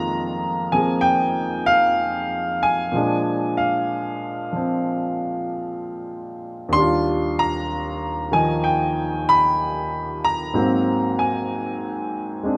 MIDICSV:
0, 0, Header, 1, 2, 480
1, 0, Start_track
1, 0, Tempo, 949367
1, 1483, Time_signature, 4, 2, 24, 8
1, 6355, End_track
2, 0, Start_track
2, 0, Title_t, "Upright piano"
2, 0, Program_c, 0, 0
2, 0, Control_c, 0, 64, 127
2, 0, Note_on_c, 0, 41, 48
2, 0, Note_on_c, 0, 51, 47
2, 0, Note_on_c, 0, 56, 48
2, 0, Note_on_c, 0, 58, 44
2, 0, Note_on_c, 0, 65, 57
2, 0, Note_on_c, 0, 82, 97
2, 345, Note_off_c, 0, 82, 0
2, 365, Note_on_c, 0, 80, 78
2, 368, Note_off_c, 0, 58, 0
2, 368, Note_on_c, 0, 53, 41
2, 375, Note_on_c, 0, 58, 35
2, 377, Note_on_c, 0, 60, 35
2, 383, Note_on_c, 0, 68, 45
2, 511, Note_on_c, 0, 79, 92
2, 524, Note_off_c, 0, 80, 0
2, 586, Note_off_c, 0, 79, 0
2, 841, Note_on_c, 0, 77, 101
2, 1328, Note_on_c, 0, 80, 88
2, 1342, Note_off_c, 0, 77, 0
2, 1475, Note_on_c, 0, 46, 54
2, 1478, Note_off_c, 0, 53, 0
2, 1483, Note_off_c, 0, 41, 0
2, 1484, Note_off_c, 0, 51, 0
2, 1485, Note_off_c, 0, 56, 0
2, 1486, Note_off_c, 0, 58, 0
2, 1486, Note_on_c, 0, 53, 47
2, 1487, Note_off_c, 0, 60, 0
2, 1488, Note_off_c, 0, 65, 0
2, 1490, Note_off_c, 0, 68, 0
2, 1490, Control_c, 0, 64, 0
2, 1493, Note_on_c, 0, 56, 46
2, 1501, Note_on_c, 0, 62, 57
2, 1575, Control_c, 0, 64, 127
2, 1791, Note_off_c, 0, 80, 0
2, 1807, Note_on_c, 0, 77, 80
2, 2281, Note_off_c, 0, 53, 0
2, 2289, Note_on_c, 0, 53, 41
2, 2305, Note_on_c, 0, 60, 39
2, 2751, Note_off_c, 0, 77, 0
2, 3381, Note_on_c, 0, 39, 49
2, 3391, Note_off_c, 0, 62, 0
2, 3398, Note_on_c, 0, 62, 44
2, 3401, Note_off_c, 0, 46, 0
2, 3401, Note_on_c, 0, 84, 104
2, 3403, Note_off_c, 0, 53, 0
2, 3410, Note_off_c, 0, 56, 0
2, 3411, Note_off_c, 0, 60, 0
2, 3413, Control_c, 0, 64, 0
2, 3419, Note_on_c, 0, 55, 42
2, 3439, Note_on_c, 0, 65, 58
2, 3488, Control_c, 0, 64, 127
2, 3712, Note_off_c, 0, 84, 0
2, 3737, Note_on_c, 0, 82, 96
2, 4205, Note_on_c, 0, 51, 42
2, 4212, Note_on_c, 0, 80, 85
2, 4213, Note_on_c, 0, 53, 39
2, 4220, Note_on_c, 0, 63, 45
2, 4230, Note_off_c, 0, 82, 0
2, 4367, Note_on_c, 0, 79, 86
2, 4369, Note_off_c, 0, 80, 0
2, 4441, Note_off_c, 0, 79, 0
2, 4696, Note_on_c, 0, 83, 103
2, 5180, Note_on_c, 0, 82, 98
2, 5189, Note_off_c, 0, 83, 0
2, 5313, Note_off_c, 0, 39, 0
2, 5322, Note_off_c, 0, 62, 0
2, 5325, Note_off_c, 0, 51, 0
2, 5327, Note_on_c, 0, 44, 46
2, 5329, Note_off_c, 0, 53, 0
2, 5332, Note_off_c, 0, 55, 0
2, 5332, Note_off_c, 0, 63, 0
2, 5332, Control_c, 0, 64, 0
2, 5332, Note_on_c, 0, 54, 47
2, 5333, Note_on_c, 0, 58, 47
2, 5335, Note_on_c, 0, 60, 60
2, 5342, Note_off_c, 0, 65, 0
2, 5431, Control_c, 0, 64, 127
2, 5637, Note_off_c, 0, 82, 0
2, 5657, Note_on_c, 0, 80, 74
2, 6285, Note_off_c, 0, 60, 0
2, 6286, Note_on_c, 0, 56, 46
2, 6292, Note_on_c, 0, 60, 41
2, 6299, Note_on_c, 0, 62, 48
2, 6355, Note_off_c, 0, 44, 0
2, 6355, Note_off_c, 0, 54, 0
2, 6355, Note_off_c, 0, 56, 0
2, 6355, Note_off_c, 0, 58, 0
2, 6355, Note_off_c, 0, 60, 0
2, 6355, Note_off_c, 0, 62, 0
2, 6355, Note_off_c, 0, 80, 0
2, 6355, End_track
0, 0, End_of_file